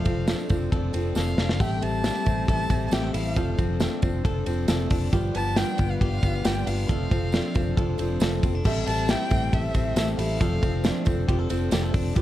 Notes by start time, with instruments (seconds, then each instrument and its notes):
Already playing: analog synth pad F3 D4 A4, clean electric guitar F3 A4, violin F5
0.05 fingered electric bass F1, clean electric guitar C4, steel-string acoustic guitar C4 F4 A4 D5, kick, ride, tambourine
0.27 steel-string acoustic guitar F3 A3 C4 F4 A4 D5, clean electric guitar D4, snare, ride, tambourine
0.49 fingered electric bass F1, clean electric guitar C4, steel-string acoustic guitar C4 F4 A4 D5, kick, ride, tambourine
0.72 fingered electric bass F1, steel-string acoustic guitar C4 F4 A4 D5, clean electric guitar A4, kick, ride
0.93 fingered electric bass F1, clean electric guitar C4, steel-string acoustic guitar C4 F4 A4 D5, ride, tambourine
1.15 fingered electric bass F1, steel-string acoustic guitar F3 A3 C4 F4 A4 D5, clean electric guitar A4, violin F5, snare, tambourine
1.37 fingered electric bass F1, steel-string acoustic guitar C4 F4 A4 D5, clean electric guitar D4, snare, tambourine
1.49 snare
1.59 fingered electric bass A1, clean electric guitar G3 A4, steel-string acoustic guitar A3 C4 G4 A4 E5, analog synth pad A3 C4 G4, violin G5, kick, tambourine, splash
1.81 fingered electric bass A1, clean electric guitar C4, steel-string acoustic guitar G4 A4 E5, violin A5, ride, tambourine
2.04 steel-string acoustic guitar A3 C4 G4 A4 E5, clean electric guitar D4, snare, ride, tambourine
2.15 clean electric guitar E4
2.25 fingered electric bass A1, clean electric guitar C4, steel-string acoustic guitar G4 A4 E5, kick, ride, tambourine
2.47 fingered electric bass A1, steel-string acoustic guitar C4 G4 A4 E5, clean electric guitar A4, violin A5, kick, ride, tambourine
2.69 fingered electric bass A1, clean electric guitar C4, steel-string acoustic guitar G4 A4 E5, kick, ride, tambourine
2.86 violin A5
2.91 fingered electric bass A1, steel-string acoustic guitar A3 C4 G4 A4 E5, clean electric guitar G4, violin G5, snare, ride, tambourine
3.03 clean electric guitar A4
3.13 fingered electric bass A1, clean electric guitar E4, steel-string acoustic guitar G4 A4 E5, violin F5, open hi-hat, ride, tambourine
3.35 steel-string acoustic guitar F3 A3 C4 F4 A4 D5, clean electric guitar F3 A4, analog synth pad F3 D4 A4, kick, hi-hat pedal, ride, tambourine
3.58 fingered electric bass F1, clean electric guitar C4, steel-string acoustic guitar C4 F4 A4 D5, kick, ride, tambourine
3.80 steel-string acoustic guitar F3 A3 C4 F4 A4 D5, clean electric guitar D4, snare, ride, tambourine
4.02 fingered electric bass F1, clean electric guitar C4, steel-string acoustic guitar C4 F4 A4 D5, kick, ride, tambourine
4.24 fingered electric bass F1, steel-string acoustic guitar C4 F4 A4 D5, clean electric guitar A4, kick, ride, tambourine
4.45 fingered electric bass F1, clean electric guitar C4, steel-string acoustic guitar C4 F4 A4 D5, ride, tambourine
4.68 fingered electric bass F1, steel-string acoustic guitar F3 A3 C4 F4 A4 D5, clean electric guitar A4, snare, ride, tambourine
4.89 fingered electric bass F1, steel-string acoustic guitar C4 F4 A4 D5, clean electric guitar D4, kick, open hi-hat, ride, tambourine
5.12 fingered electric bass G1, clean electric guitar F3 G4, analog synth pad G3 F4 B4, steel-string acoustic guitar G3 D4 F4 B4 D5, kick, hi-hat pedal, ride, tambourine
5.34 fingered electric bass G1, clean electric guitar B3, steel-string acoustic guitar F4 B4 D5, violin A5, ride, tambourine
5.56 steel-string acoustic guitar G3 D4 F4 B4 D5, clean electric guitar D4, violin G5, snare, ride, tambourine
5.78 fingered electric bass G1, clean electric guitar B3, steel-string acoustic guitar F4 B4 D5, kick, ride, tambourine
5.90 violin F5
6.00 fingered electric bass G1, steel-string acoustic guitar D4 F4 B4 D5, clean electric guitar G4, violin F5, kick, ride
6.22 fingered electric bass G1, clean electric guitar B3, steel-string acoustic guitar F4 B4 D5, kick, ride, tambourine
6.44 fingered electric bass G1, steel-string acoustic guitar G3 D4 F4 B4 D5, clean electric guitar G4, violin G5, snare, ride, tambourine
6.66 fingered electric bass G1, clean electric guitar D4, steel-string acoustic guitar F4 B4 D5, violin F5, open hi-hat, ride, tambourine
6.89 fingered electric bass F1, steel-string acoustic guitar F3 A3 C4 F4 A4 D5, clean electric guitar F3 A4, analog synth pad F3 D4 A4, kick, hi-hat pedal, ride, tambourine
7.11 fingered electric bass F1, clean electric guitar C4, steel-string acoustic guitar C4 F4 A4 D5, kick, ride, tambourine
7.32 steel-string acoustic guitar F3 A3 C4 F4 A4 D5, clean electric guitar D4, snare, ride, tambourine
7.54 fingered electric bass F1, clean electric guitar C4, steel-string acoustic guitar C4 F4 A4 D5, kick, ride, tambourine
7.76 fingered electric bass F1, steel-string acoustic guitar C4 F4 A4 D5, clean electric guitar A4, kick, ride
7.98 fingered electric bass F1, clean electric guitar C4, steel-string acoustic guitar C4 F4 A4 D5, ride, tambourine
8.20 fingered electric bass F1, steel-string acoustic guitar F3 A3 C4 F4 A4 D5, clean electric guitar A4, snare, ride, tambourine
8.43 fingered electric bass F1, clean electric guitar C4, steel-string acoustic guitar C4 F4 A4 D5, kick, ride, tambourine
8.55 clean electric guitar D4
8.64 fingered electric bass A1, clean electric guitar G3 A4, steel-string acoustic guitar A3 C4 G4 A4 E5, analog synth pad A3 C4 G4, kick, crash, tambourine
8.86 fingered electric bass A1, clean electric guitar C4, steel-string acoustic guitar G4 A4 E5, violin A5, ride, tambourine
9.08 steel-string acoustic guitar A3 C4 G4 A4 E5, clean electric guitar E4, violin G5, snare, ride, tambourine
9.29 fingered electric bass A1, clean electric guitar C4, steel-string acoustic guitar G4 A4 E5, kick, ride, tambourine
9.52 fingered electric bass A1, steel-string acoustic guitar C4 G4 A4 E5, clean electric guitar A4, violin E5, kick, ride, tambourine
9.74 fingered electric bass A1, clean electric guitar C4, steel-string acoustic guitar G4 A4 E5, kick, ride, tambourine
9.96 fingered electric bass A1, steel-string acoustic guitar A3 C4 G4 A4 E5, clean electric guitar A4, violin E5, snare, ride, tambourine
10.18 fingered electric bass A1, clean electric guitar E4, steel-string acoustic guitar G4 A4 E5, violin F5, open hi-hat, ride, tambourine
10.40 fingered electric bass F1, clean electric guitar F3 A4, steel-string acoustic guitar F3 A3 C4 F4 A4 D5, analog synth pad F3 D4 A4, kick, hi-hat pedal, ride, tambourine
10.62 fingered electric bass F1, clean electric guitar C4, steel-string acoustic guitar C4 F4 A4 D5, kick, ride, tambourine
10.84 steel-string acoustic guitar F3 A3 C4 F4 A4 D5, clean electric guitar D4, snare, ride, tambourine
11.05 fingered electric bass F1, clean electric guitar C4, steel-string acoustic guitar C4 F4 A4 D5, kick, ride, tambourine
11.27 fingered electric bass F1, steel-string acoustic guitar C4 F4 A4 D5, clean electric guitar G4, kick, ride
11.39 clean electric guitar A4
11.49 fingered electric bass F1, clean electric guitar C4, steel-string acoustic guitar C4 F4 A4 D5, ride, tambourine
11.71 fingered electric bass F1, steel-string acoustic guitar F3 A3 C4 F4 A4 D5, clean electric guitar G4, snare, ride, tambourine
11.83 clean electric guitar A4
11.93 fingered electric bass F1, steel-string acoustic guitar C4 F4 A4 D5, clean electric guitar D4, kick, open hi-hat, ride, tambourine
12.15 fingered electric bass G1, clean electric guitar F3 G4, steel-string acoustic guitar G3 D4 F4 B4 D5, analog synth pad G3 F4 B4, kick, hi-hat pedal, ride, tambourine